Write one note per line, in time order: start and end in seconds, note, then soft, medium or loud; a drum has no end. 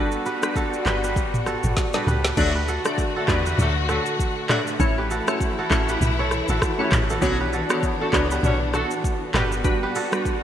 0.00 0.17 G1 loud
0.00 0.11 G3 loud
0.00 2.34 G3 medium
0.00 2.33 B3 medium
0.00 0.11 D4 medium
0.00 0.11 F#4 medium
0.00 0.33 F#4 medium
0.00 2.34 F#4 medium
0.00 0.56 A4 loud
0.00 0.12 B4 loud
0.00 0.26 B4 medium
0.11 shaker soft
0.26 0.63 G4 medium
0.26 0.86 B4 medium
0.26 shaker medium
0.42 0.83 G3 medium
0.42 0.83 D4 medium
0.42 0.83 F#4 medium
0.42 0.83 B4 medium
0.42 cross-stick loud
0.42 shaker medium
0.56 0.93 F#4 medium
0.56 1.47 A4 medium
0.56 kick medium
0.56 shaker medium
0.73 shaker medium
0.85 1.18 G1 loud
0.85 1.14 G3 medium
0.85 1.14 D4 medium
0.85 1.14 F#4 medium
0.85 1.04 G4 medium
0.85 1.14 B4 medium
0.85 1.04 B4 medium
0.85 cross-stick medium
0.85 clap medium
0.85 shaker medium
1.04 1.54 G4 medium
1.04 2.07 B4 medium
1.04 shaker medium
1.16 1.58 A1 medium
1.16 kick loud
1.16 shaker medium
1.34 mid tom loud
1.34 shaker medium
1.46 1.95 F#4 medium
1.46 1.95 A4 medium
1.46 cross-stick medium
1.46 shaker medium
1.63 1.75 G1 loud
1.63 mid tom medium
1.63 shaker medium
1.77 kick medium
1.77 snare medium
1.77 shaker medium
1.93 2.06 G3 medium
1.93 2.06 D4 medium
1.93 2.06 F#4 medium
1.93 2.14 F#4 medium
1.93 2.68 A4 medium
1.93 2.06 B4 medium
1.93 snare medium
1.93 shaker medium
2.07 2.33 C#2 medium
2.07 2.56 G4 medium
2.07 2.55 B4 medium
2.07 mid tom medium
2.07 shaker medium
2.25 snare medium
2.25 shaker medium
2.37 2.79 D2 loud
2.37 2.51 D3 loud
2.37 4.77 D3 medium
2.37 2.51 F#3 loud
2.37 2.81 A3 loud
2.37 2.51 A3 loud
2.37 7.18 A3 medium
2.37 2.81 D4 medium
2.37 2.51 F#4 loud
2.37 4.77 F#4 medium
2.37 2.81 F#4 medium
2.37 2.81 D5 loud
2.37 kick loud
2.37 crash loud
2.37 shaker medium
2.55 2.75 G4 medium
2.55 3.46 B4 medium
2.68 3.17 F#4 medium
2.68 3.16 A4 medium
2.68 shaker medium
2.85 2.95 F#3 medium
2.85 3.25 A3 medium
2.85 2.95 A3 medium
2.85 3.25 D4 medium
2.85 2.95 D4 medium
2.85 3.25 F#4 medium
2.85 2.95 A4 medium
2.85 3.25 D5 medium
2.85 cross-stick loud
2.85 shaker medium
2.98 kick medium
2.98 shaker medium
3.15 3.26 F#3 medium
3.15 3.26 A3 medium
3.15 3.26 D4 medium
3.15 3.53 F#4 medium
3.15 3.26 A4 medium
3.15 3.89 A4 medium
3.28 3.54 E2 loud
3.28 3.56 A3 medium
3.28 3.42 B3 medium
3.28 3.56 D4 medium
3.28 3.57 F#4 medium
3.28 3.42 G4 medium
3.28 3.42 B4 medium
3.28 3.57 D5 medium
3.28 kick loud
3.28 cross-stick medium
3.28 clap medium
3.28 shaker medium
3.46 3.96 G4 medium
3.46 4.50 B4 medium
3.46 shaker medium
3.58 4.00 D2 loud
3.58 3.73 F#3 medium
3.58 3.73 A3 medium
3.58 3.73 D4 medium
3.58 3.73 A4 loud
3.58 mid tom medium
3.58 shaker medium
3.89 4.03 D3 medium
3.89 4.03 F#3 medium
3.89 4.03 A3 medium
3.89 4.03 F#4 loud
3.89 4.57 F#4 medium
3.89 5.11 A4 medium
3.89 cross-stick medium
3.89 shaker medium
4.06 shaker medium
4.19 kick medium
4.19 shaker medium
4.49 4.60 D3 medium
4.49 4.60 F#3 medium
4.49 4.66 A3 medium
4.49 4.60 A3 medium
4.49 4.66 D4 medium
4.49 4.60 F#4 loud
4.49 4.66 F#4 medium
4.49 4.98 G4 medium
4.49 4.98 B4 medium
4.49 4.66 D5 medium
4.49 cross-stick loud
4.49 clap loud
4.49 mid tom loud
4.49 shaker medium
4.67 shaker medium
4.80 5.21 A1 loud
4.80 9.30 E3 medium
4.80 4.96 A3 medium
4.80 4.96 C#4 medium
4.80 4.96 E4 medium
4.80 7.20 E4 medium
4.80 4.96 C#5 loud
4.80 kick loud
4.80 shaker medium
4.98 5.18 G4 medium
4.98 5.89 B4 medium
5.11 5.59 F#4 medium
5.11 5.58 A4 medium
5.11 shaker medium
5.27 5.67 A3 medium
5.27 5.68 C#4 medium
5.27 5.68 E4 medium
5.27 5.68 C#5 medium
5.27 cross-stick loud
5.27 shaker medium
5.41 kick loud
5.41 shaker medium
5.59 5.96 F#4 medium
5.59 6.20 A4 medium
5.70 5.97 A1 medium
5.70 5.99 A3 medium
5.70 5.99 C#4 medium
5.70 5.99 E4 medium
5.70 5.99 C#5 medium
5.70 kick loud
5.70 cross-stick medium
5.70 clap medium
5.70 shaker medium
5.89 6.56 G4 medium
5.89 6.80 B4 medium
5.89 shaker medium
6.01 6.42 B1 loud
6.01 mid tom loud
6.01 shaker medium
6.19 6.49 A4 medium
6.19 7.34 C#5 medium
6.31 cross-stick medium
6.31 shaker medium
6.48 6.60 A1 loud
6.48 6.87 F#4 medium
6.48 7.10 A4 medium
6.48 shaker medium
6.62 kick medium
6.62 cross-stick loud
6.62 shaker medium
6.79 6.91 A3 medium
6.79 6.91 C#4 medium
6.79 6.91 E4 medium
6.79 7.17 G4 medium
6.79 7.40 B4 medium
6.79 6.91 C#5 medium
6.92 7.18 A1 medium
6.92 kick loud
6.92 cross-stick loud
6.92 clap loud
6.92 mid tom loud
6.92 shaker medium
7.10 7.47 F#4 medium
7.10 7.53 A4 medium
7.10 shaker medium
7.22 7.64 B1 loud
7.22 7.36 D3 loud
7.22 7.36 F#3 loud
7.22 7.66 B3 loud
7.22 10.43 B3 medium
7.22 7.36 C#4 loud
7.22 7.66 D4 medium
7.22 9.32 D4 medium
7.22 7.66 F#4 medium
7.22 7.36 F#4 loud
7.22 7.66 C#5 loud
7.22 kick loud
7.22 shaker medium
7.41 7.60 G4 medium
7.41 8.31 B4 medium
7.53 8.02 F#4 medium
7.53 8.01 A4 medium
7.53 shaker medium
7.70 7.80 A3 medium
7.70 8.10 B3 medium
7.70 8.10 D4 medium
7.70 7.80 F#4 medium
7.70 8.10 F#4 medium
7.70 7.80 A4 medium
7.70 8.10 C#5 medium
7.70 cross-stick loud
7.70 shaker medium
7.83 kick loud
7.83 shaker medium
8.00 8.10 A3 medium
8.00 8.10 F#4 medium
8.00 8.38 F#4 medium
8.00 8.10 A4 medium
8.00 8.74 A4 medium
8.13 8.39 C#2 medium
8.13 8.27 F#3 medium
8.13 8.41 B3 medium
8.13 8.27 B3 medium
8.13 8.41 D4 medium
8.13 8.27 D4 medium
8.13 8.41 F#4 medium
8.13 8.27 B4 medium
8.13 8.41 C#5 medium
8.13 kick medium
8.13 cross-stick medium
8.13 clap medium
8.13 shaker medium
8.31 8.81 G4 medium
8.31 9.35 B4 medium
8.31 shaker medium
8.43 8.85 B1 loud
8.43 8.57 F#3 medium
8.43 8.57 C#4 medium
8.43 8.57 D4 medium
8.43 8.57 C#5 medium
8.43 mid tom medium
8.43 shaker medium
8.74 8.88 A3 medium
8.74 8.88 F#4 medium
8.74 9.42 F#4 medium
8.74 8.88 A4 loud
8.74 9.95 A4 medium
8.74 cross-stick medium
8.74 shaker medium
8.91 shaker medium
9.04 kick medium
9.04 shaker medium
9.34 9.87 G1 loud
9.34 9.45 D3 medium
9.34 9.51 G3 medium
9.34 9.45 G3 medium
9.34 10.43 G3 medium
9.34 9.45 B3 medium
9.34 9.51 D4 medium
9.34 9.51 F#4 medium
9.34 10.43 F#4 medium
9.34 9.45 G4 loud
9.34 9.83 G4 medium
9.34 9.51 B4 medium
9.34 9.83 B4 medium
9.34 cross-stick loud
9.34 clap loud
9.34 mid tom loud
9.34 shaker medium
9.52 shaker medium
9.64 9.81 G3 medium
9.64 9.81 D4 medium
9.64 9.81 F#4 medium
9.64 9.81 B4 loud
9.64 kick loud
9.64 shaker medium
9.83 10.02 G4 medium
9.83 10.43 B4 medium
9.95 10.43 F#4 medium
9.95 10.43 A4 medium
9.95 open hi-hat medium
9.95 shaker medium
10.12 10.43 G3 medium
10.12 10.43 D4 medium
10.12 10.43 F#4 medium
10.12 10.43 B4 medium
10.12 cross-stick loud
10.12 shaker medium
10.25 kick medium
10.25 shaker medium